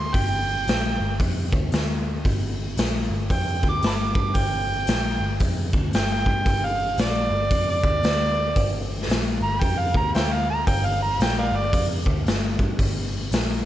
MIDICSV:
0, 0, Header, 1, 4, 480
1, 0, Start_track
1, 0, Tempo, 526778
1, 132, Time_signature, 4, 2, 24, 8
1, 12440, End_track
2, 0, Start_track
2, 0, Title_t, "Harmonica"
2, 0, Program_c, 0, 22
2, 0, Note_on_c, 0, 84, 85
2, 130, Note_on_c, 0, 79, 111
2, 144, Note_off_c, 0, 84, 0
2, 1061, Note_off_c, 0, 79, 0
2, 3025, Note_on_c, 0, 79, 86
2, 3327, Note_off_c, 0, 79, 0
2, 3359, Note_on_c, 0, 86, 88
2, 3499, Note_off_c, 0, 86, 0
2, 3521, Note_on_c, 0, 81, 62
2, 3521, Note_on_c, 0, 83, 62
2, 3521, Note_on_c, 0, 86, 88
2, 3585, Note_off_c, 0, 83, 0
2, 3596, Note_off_c, 0, 81, 0
2, 3977, Note_on_c, 0, 79, 116
2, 3990, Note_off_c, 0, 86, 0
2, 4902, Note_off_c, 0, 79, 0
2, 5421, Note_on_c, 0, 79, 92
2, 5568, Note_off_c, 0, 79, 0
2, 5580, Note_on_c, 0, 79, 99
2, 6062, Note_on_c, 0, 77, 89
2, 6076, Note_off_c, 0, 79, 0
2, 6364, Note_off_c, 0, 77, 0
2, 6383, Note_on_c, 0, 74, 91
2, 6995, Note_off_c, 0, 74, 0
2, 7020, Note_on_c, 0, 74, 111
2, 7944, Note_off_c, 0, 74, 0
2, 8594, Note_on_c, 0, 82, 95
2, 8754, Note_on_c, 0, 79, 84
2, 8768, Note_off_c, 0, 82, 0
2, 8922, Note_on_c, 0, 77, 88
2, 8936, Note_off_c, 0, 79, 0
2, 9076, Note_off_c, 0, 77, 0
2, 9082, Note_on_c, 0, 82, 108
2, 9239, Note_off_c, 0, 82, 0
2, 9247, Note_on_c, 0, 72, 56
2, 9247, Note_on_c, 0, 76, 56
2, 9247, Note_on_c, 0, 79, 80
2, 9303, Note_off_c, 0, 72, 0
2, 9328, Note_off_c, 0, 76, 0
2, 9412, Note_on_c, 0, 77, 85
2, 9426, Note_off_c, 0, 79, 0
2, 9564, Note_off_c, 0, 77, 0
2, 9569, Note_on_c, 0, 82, 94
2, 9717, Note_off_c, 0, 82, 0
2, 9722, Note_on_c, 0, 79, 102
2, 9890, Note_on_c, 0, 77, 90
2, 9904, Note_off_c, 0, 79, 0
2, 10038, Note_off_c, 0, 77, 0
2, 10044, Note_on_c, 0, 82, 84
2, 10200, Note_off_c, 0, 82, 0
2, 10223, Note_on_c, 0, 79, 102
2, 10370, Note_off_c, 0, 79, 0
2, 10377, Note_on_c, 0, 70, 68
2, 10377, Note_on_c, 0, 74, 68
2, 10377, Note_on_c, 0, 77, 97
2, 10443, Note_off_c, 0, 74, 0
2, 10447, Note_off_c, 0, 70, 0
2, 10542, Note_on_c, 0, 74, 101
2, 10555, Note_off_c, 0, 77, 0
2, 10786, Note_off_c, 0, 74, 0
2, 12440, End_track
3, 0, Start_track
3, 0, Title_t, "Picked electric bass"
3, 0, Program_c, 1, 34
3, 0, Note_on_c, 1, 38, 88
3, 94, Note_off_c, 1, 38, 0
3, 131, Note_on_c, 1, 31, 82
3, 577, Note_off_c, 1, 31, 0
3, 613, Note_on_c, 1, 34, 84
3, 890, Note_off_c, 1, 34, 0
3, 912, Note_on_c, 1, 31, 84
3, 1079, Note_off_c, 1, 31, 0
3, 1093, Note_on_c, 1, 41, 92
3, 1369, Note_off_c, 1, 41, 0
3, 1392, Note_on_c, 1, 38, 90
3, 1559, Note_off_c, 1, 38, 0
3, 1571, Note_on_c, 1, 38, 89
3, 2016, Note_off_c, 1, 38, 0
3, 2053, Note_on_c, 1, 31, 82
3, 2497, Note_off_c, 1, 31, 0
3, 2526, Note_on_c, 1, 34, 87
3, 2804, Note_off_c, 1, 34, 0
3, 2824, Note_on_c, 1, 31, 73
3, 2993, Note_off_c, 1, 31, 0
3, 3009, Note_on_c, 1, 41, 99
3, 3286, Note_off_c, 1, 41, 0
3, 3312, Note_on_c, 1, 38, 85
3, 3477, Note_off_c, 1, 38, 0
3, 3489, Note_on_c, 1, 31, 84
3, 3766, Note_off_c, 1, 31, 0
3, 3784, Note_on_c, 1, 43, 90
3, 3953, Note_off_c, 1, 43, 0
3, 3965, Note_on_c, 1, 31, 91
3, 4412, Note_off_c, 1, 31, 0
3, 4447, Note_on_c, 1, 34, 96
3, 4724, Note_off_c, 1, 34, 0
3, 4742, Note_on_c, 1, 31, 79
3, 4911, Note_off_c, 1, 31, 0
3, 4927, Note_on_c, 1, 41, 97
3, 5204, Note_off_c, 1, 41, 0
3, 5228, Note_on_c, 1, 38, 95
3, 5394, Note_off_c, 1, 38, 0
3, 5411, Note_on_c, 1, 31, 76
3, 5686, Note_off_c, 1, 31, 0
3, 5706, Note_on_c, 1, 43, 101
3, 5874, Note_off_c, 1, 43, 0
3, 5886, Note_on_c, 1, 31, 75
3, 6331, Note_off_c, 1, 31, 0
3, 6361, Note_on_c, 1, 34, 93
3, 6640, Note_off_c, 1, 34, 0
3, 6658, Note_on_c, 1, 31, 87
3, 6829, Note_off_c, 1, 31, 0
3, 6842, Note_on_c, 1, 41, 99
3, 7121, Note_off_c, 1, 41, 0
3, 7142, Note_on_c, 1, 38, 92
3, 7311, Note_off_c, 1, 38, 0
3, 7320, Note_on_c, 1, 38, 96
3, 7768, Note_off_c, 1, 38, 0
3, 7802, Note_on_c, 1, 31, 85
3, 8249, Note_off_c, 1, 31, 0
3, 8278, Note_on_c, 1, 34, 82
3, 8559, Note_off_c, 1, 34, 0
3, 8573, Note_on_c, 1, 31, 75
3, 8746, Note_off_c, 1, 31, 0
3, 8763, Note_on_c, 1, 41, 99
3, 9042, Note_off_c, 1, 41, 0
3, 9063, Note_on_c, 1, 38, 80
3, 9232, Note_off_c, 1, 38, 0
3, 9245, Note_on_c, 1, 38, 91
3, 9692, Note_off_c, 1, 38, 0
3, 9728, Note_on_c, 1, 31, 88
3, 10174, Note_off_c, 1, 31, 0
3, 10202, Note_on_c, 1, 34, 86
3, 10482, Note_off_c, 1, 34, 0
3, 10496, Note_on_c, 1, 31, 81
3, 10669, Note_off_c, 1, 31, 0
3, 10689, Note_on_c, 1, 41, 91
3, 10966, Note_off_c, 1, 41, 0
3, 10993, Note_on_c, 1, 38, 95
3, 11158, Note_off_c, 1, 38, 0
3, 11171, Note_on_c, 1, 31, 79
3, 11447, Note_off_c, 1, 31, 0
3, 11472, Note_on_c, 1, 43, 89
3, 11638, Note_off_c, 1, 43, 0
3, 11654, Note_on_c, 1, 31, 82
3, 12098, Note_off_c, 1, 31, 0
3, 12132, Note_on_c, 1, 34, 81
3, 12409, Note_off_c, 1, 34, 0
3, 12440, End_track
4, 0, Start_track
4, 0, Title_t, "Drums"
4, 129, Note_on_c, 9, 36, 102
4, 129, Note_on_c, 9, 46, 56
4, 220, Note_off_c, 9, 36, 0
4, 221, Note_off_c, 9, 46, 0
4, 615, Note_on_c, 9, 46, 51
4, 631, Note_on_c, 9, 38, 103
4, 706, Note_off_c, 9, 46, 0
4, 723, Note_off_c, 9, 38, 0
4, 1092, Note_on_c, 9, 36, 104
4, 1095, Note_on_c, 9, 46, 60
4, 1183, Note_off_c, 9, 36, 0
4, 1186, Note_off_c, 9, 46, 0
4, 1390, Note_on_c, 9, 36, 104
4, 1481, Note_off_c, 9, 36, 0
4, 1567, Note_on_c, 9, 46, 46
4, 1584, Note_on_c, 9, 38, 97
4, 1658, Note_off_c, 9, 46, 0
4, 1675, Note_off_c, 9, 38, 0
4, 2050, Note_on_c, 9, 36, 99
4, 2050, Note_on_c, 9, 46, 51
4, 2141, Note_off_c, 9, 46, 0
4, 2142, Note_off_c, 9, 36, 0
4, 2527, Note_on_c, 9, 46, 57
4, 2544, Note_on_c, 9, 38, 117
4, 2618, Note_off_c, 9, 46, 0
4, 2635, Note_off_c, 9, 38, 0
4, 3008, Note_on_c, 9, 36, 105
4, 3010, Note_on_c, 9, 46, 56
4, 3099, Note_off_c, 9, 36, 0
4, 3101, Note_off_c, 9, 46, 0
4, 3309, Note_on_c, 9, 36, 94
4, 3400, Note_off_c, 9, 36, 0
4, 3486, Note_on_c, 9, 46, 54
4, 3503, Note_on_c, 9, 38, 98
4, 3577, Note_off_c, 9, 46, 0
4, 3594, Note_off_c, 9, 38, 0
4, 3784, Note_on_c, 9, 36, 112
4, 3875, Note_off_c, 9, 36, 0
4, 3961, Note_on_c, 9, 46, 56
4, 3965, Note_on_c, 9, 36, 100
4, 4052, Note_off_c, 9, 46, 0
4, 4056, Note_off_c, 9, 36, 0
4, 4438, Note_on_c, 9, 46, 56
4, 4455, Note_on_c, 9, 38, 105
4, 4529, Note_off_c, 9, 46, 0
4, 4546, Note_off_c, 9, 38, 0
4, 4920, Note_on_c, 9, 46, 57
4, 4925, Note_on_c, 9, 36, 108
4, 5011, Note_off_c, 9, 46, 0
4, 5016, Note_off_c, 9, 36, 0
4, 5224, Note_on_c, 9, 36, 108
4, 5315, Note_off_c, 9, 36, 0
4, 5404, Note_on_c, 9, 46, 55
4, 5421, Note_on_c, 9, 38, 94
4, 5496, Note_off_c, 9, 46, 0
4, 5512, Note_off_c, 9, 38, 0
4, 5705, Note_on_c, 9, 36, 98
4, 5797, Note_off_c, 9, 36, 0
4, 5886, Note_on_c, 9, 36, 109
4, 5886, Note_on_c, 9, 46, 51
4, 5977, Note_off_c, 9, 36, 0
4, 5977, Note_off_c, 9, 46, 0
4, 6358, Note_on_c, 9, 46, 50
4, 6374, Note_on_c, 9, 38, 107
4, 6449, Note_off_c, 9, 46, 0
4, 6465, Note_off_c, 9, 38, 0
4, 6839, Note_on_c, 9, 46, 58
4, 6841, Note_on_c, 9, 36, 106
4, 6930, Note_off_c, 9, 46, 0
4, 6932, Note_off_c, 9, 36, 0
4, 7140, Note_on_c, 9, 36, 105
4, 7231, Note_off_c, 9, 36, 0
4, 7318, Note_on_c, 9, 46, 54
4, 7334, Note_on_c, 9, 38, 108
4, 7409, Note_off_c, 9, 46, 0
4, 7425, Note_off_c, 9, 38, 0
4, 7801, Note_on_c, 9, 36, 98
4, 7803, Note_on_c, 9, 46, 59
4, 7892, Note_off_c, 9, 36, 0
4, 7895, Note_off_c, 9, 46, 0
4, 8211, Note_on_c, 9, 38, 31
4, 8289, Note_on_c, 9, 46, 60
4, 8302, Note_off_c, 9, 38, 0
4, 8305, Note_on_c, 9, 38, 109
4, 8380, Note_off_c, 9, 46, 0
4, 8396, Note_off_c, 9, 38, 0
4, 8762, Note_on_c, 9, 36, 108
4, 8767, Note_on_c, 9, 46, 53
4, 8853, Note_off_c, 9, 36, 0
4, 8858, Note_off_c, 9, 46, 0
4, 9061, Note_on_c, 9, 36, 90
4, 9152, Note_off_c, 9, 36, 0
4, 9244, Note_on_c, 9, 46, 51
4, 9260, Note_on_c, 9, 38, 96
4, 9335, Note_off_c, 9, 46, 0
4, 9351, Note_off_c, 9, 38, 0
4, 9724, Note_on_c, 9, 36, 103
4, 9730, Note_on_c, 9, 46, 59
4, 9816, Note_off_c, 9, 36, 0
4, 9821, Note_off_c, 9, 46, 0
4, 10207, Note_on_c, 9, 46, 52
4, 10223, Note_on_c, 9, 38, 110
4, 10298, Note_off_c, 9, 46, 0
4, 10314, Note_off_c, 9, 38, 0
4, 10689, Note_on_c, 9, 36, 105
4, 10690, Note_on_c, 9, 46, 61
4, 10780, Note_off_c, 9, 36, 0
4, 10781, Note_off_c, 9, 46, 0
4, 10990, Note_on_c, 9, 36, 98
4, 11081, Note_off_c, 9, 36, 0
4, 11175, Note_on_c, 9, 46, 54
4, 11192, Note_on_c, 9, 38, 98
4, 11266, Note_off_c, 9, 46, 0
4, 11283, Note_off_c, 9, 38, 0
4, 11473, Note_on_c, 9, 36, 108
4, 11564, Note_off_c, 9, 36, 0
4, 11654, Note_on_c, 9, 36, 101
4, 11661, Note_on_c, 9, 46, 64
4, 11745, Note_off_c, 9, 36, 0
4, 11752, Note_off_c, 9, 46, 0
4, 12138, Note_on_c, 9, 46, 63
4, 12155, Note_on_c, 9, 38, 111
4, 12230, Note_off_c, 9, 46, 0
4, 12246, Note_off_c, 9, 38, 0
4, 12440, End_track
0, 0, End_of_file